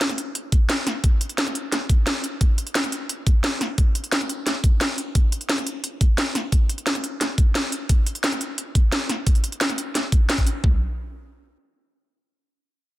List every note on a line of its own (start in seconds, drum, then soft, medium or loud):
0.01 snare loud
0.01 closed hi-hat loud
0.09 snare soft
0.09 closed hi-hat soft
0.18 closed hi-hat medium
0.35 closed hi-hat loud
0.52 kick loud
0.52 closed hi-hat medium
0.69 snare loud
0.69 closed hi-hat loud
0.87 snare medium
0.87 closed hi-hat medium
1.04 kick loud
1.04 closed hi-hat medium
1.21 closed hi-hat medium
1.29 closed hi-hat soft
1.38 snare loud
1.38 closed hi-hat medium
1.47 snare soft
1.47 closed hi-hat soft
1.55 closed hi-hat medium
1.72 snare soft
1.72 closed hi-hat loud
1.89 kick loud
1.89 closed hi-hat medium
2.07 snare loud
2.07 closed hi-hat loud
2.24 closed hi-hat medium
2.41 kick loud
2.41 closed hi-hat medium
2.58 closed hi-hat medium
2.67 closed hi-hat soft
2.75 snare loud
2.75 closed hi-hat medium
2.84 snare soft
2.84 closed hi-hat soft
2.92 closed hi-hat medium
3.09 closed hi-hat medium
3.27 kick loud
3.27 closed hi-hat medium
3.44 snare loud
3.44 closed hi-hat medium
3.61 snare medium
3.61 closed hi-hat medium
3.78 kick loud
3.78 closed hi-hat medium
3.95 closed hi-hat medium
4.04 closed hi-hat soft
4.12 snare loud
4.12 closed hi-hat medium
4.21 snare soft
4.21 closed hi-hat soft
4.29 closed hi-hat medium
4.47 snare soft
4.47 closed hi-hat medium
4.64 kick loud
4.64 closed hi-hat medium
4.81 snare loud
4.81 closed hi-hat medium
4.98 closed hi-hat medium
5.15 kick loud
5.15 closed hi-hat medium
5.32 closed hi-hat medium
5.41 closed hi-hat soft
5.49 snare loud
5.49 closed hi-hat medium
5.58 snare soft
5.58 closed hi-hat soft
5.67 closed hi-hat medium
5.84 closed hi-hat medium
6.01 kick loud
6.01 closed hi-hat medium
6.18 snare loud
6.18 closed hi-hat medium
6.35 snare medium
6.35 closed hi-hat medium
6.52 kick loud
6.52 closed hi-hat loud
6.69 closed hi-hat medium
6.78 closed hi-hat soft
6.87 snare loud
6.87 closed hi-hat medium
6.95 snare soft
6.95 closed hi-hat soft
7.04 closed hi-hat medium
7.21 snare soft
7.21 closed hi-hat medium
7.38 kick loud
7.38 closed hi-hat medium
7.55 snare loud
7.55 closed hi-hat medium
7.72 closed hi-hat medium
7.89 kick loud
7.89 closed hi-hat medium
8.07 closed hi-hat medium
8.15 closed hi-hat soft
8.24 snare loud
8.24 closed hi-hat loud
8.32 snare soft
8.32 closed hi-hat soft
8.41 closed hi-hat medium
8.58 closed hi-hat loud
8.75 kick loud
8.75 closed hi-hat medium
8.92 snare loud
8.92 closed hi-hat loud
9.09 snare medium
9.09 closed hi-hat medium
9.27 kick loud
9.27 closed hi-hat loud
9.35 closed hi-hat soft
9.44 closed hi-hat medium
9.52 closed hi-hat soft
9.61 snare loud
9.61 closed hi-hat loud
9.69 snare soft
9.69 closed hi-hat soft
9.78 closed hi-hat medium
9.95 snare soft
9.95 closed hi-hat loud
10.12 kick loud
10.12 closed hi-hat medium
10.29 snare loud
10.29 closed hi-hat loud
10.38 kick medium
10.38 closed hi-hat soft
10.47 closed hi-hat medium
10.64 kick loud
10.64 floor tom loud